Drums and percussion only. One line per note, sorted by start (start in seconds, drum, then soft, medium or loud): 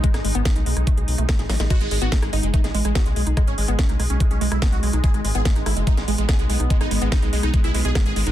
0.04 kick loud
0.04 closed hi-hat medium
0.14 cross-stick medium
0.14 snare soft
0.14 closed hi-hat medium
0.25 open hi-hat loud
0.35 closed hi-hat medium
0.45 kick loud
0.45 snare loud
0.45 closed hi-hat medium
0.56 closed hi-hat medium
0.66 open hi-hat medium
0.77 cross-stick soft
0.77 closed hi-hat medium
0.87 kick loud
0.87 closed hi-hat medium
0.97 closed hi-hat medium
1.08 open hi-hat loud
1.18 closed hi-hat medium
1.29 kick loud
1.29 cross-stick medium
1.29 snare loud
1.29 closed hi-hat medium
1.39 snare medium
1.39 closed hi-hat medium
1.50 snare medium
1.50 open hi-hat medium
1.60 snare medium
1.60 closed hi-hat medium
1.70 kick loud
1.70 cross-stick soft
1.70 closed hi-hat medium
1.70 crash medium
1.81 closed hi-hat medium
1.91 open hi-hat loud
2.02 closed hi-hat medium
2.12 kick loud
2.12 snare loud
2.12 closed hi-hat medium
2.22 cross-stick medium
2.22 closed hi-hat medium
2.33 open hi-hat medium
2.43 closed hi-hat medium
2.54 kick loud
2.54 closed hi-hat medium
2.64 snare soft
2.64 closed hi-hat medium
2.75 open hi-hat loud
2.85 cross-stick soft
2.85 closed hi-hat medium
2.95 kick loud
2.95 snare loud
2.95 closed hi-hat medium
3.06 closed hi-hat medium
3.16 open hi-hat medium
3.27 closed hi-hat medium
3.37 kick loud
3.37 cross-stick medium
3.37 closed hi-hat medium
3.47 closed hi-hat medium
3.58 open hi-hat loud
3.68 closed hi-hat medium
3.79 kick loud
3.79 snare loud
3.79 closed hi-hat medium
3.89 closed hi-hat medium
4.00 cross-stick soft
4.00 open hi-hat loud
4.10 closed hi-hat medium
4.20 kick loud
4.20 closed hi-hat medium
4.31 closed hi-hat medium
4.41 open hi-hat loud
4.52 cross-stick medium
4.52 closed hi-hat medium
4.62 kick loud
4.62 snare loud
4.62 closed hi-hat medium
4.72 closed hi-hat medium
4.83 open hi-hat medium
4.93 closed hi-hat medium
5.04 kick loud
5.04 closed hi-hat medium
5.14 cross-stick soft
5.14 closed hi-hat medium
5.25 open hi-hat loud
5.35 closed hi-hat soft
5.45 kick loud
5.45 snare loud
5.45 closed hi-hat medium
5.56 closed hi-hat medium
5.66 cross-stick medium
5.66 open hi-hat loud
5.77 closed hi-hat medium
5.87 kick loud
5.87 closed hi-hat medium
5.97 snare soft
5.97 closed hi-hat medium
6.08 open hi-hat loud
6.18 closed hi-hat medium
6.29 kick loud
6.29 cross-stick soft
6.29 snare loud
6.29 closed hi-hat medium
6.39 closed hi-hat medium
6.50 open hi-hat medium
6.60 closed hi-hat medium
6.70 kick loud
6.70 closed hi-hat medium
6.81 cross-stick medium
6.81 closed hi-hat soft
6.91 open hi-hat loud
7.02 closed hi-hat medium
7.12 kick loud
7.12 snare loud
7.12 closed hi-hat medium
7.22 closed hi-hat medium
7.33 open hi-hat loud
7.43 cross-stick soft
7.43 closed hi-hat soft
7.54 kick loud
7.54 closed hi-hat medium
7.64 closed hi-hat medium
7.75 open hi-hat loud
7.85 closed hi-hat medium
7.95 kick loud
7.95 cross-stick medium
7.95 snare loud
7.95 closed hi-hat medium
8.06 closed hi-hat soft
8.16 open hi-hat loud
8.27 closed hi-hat medium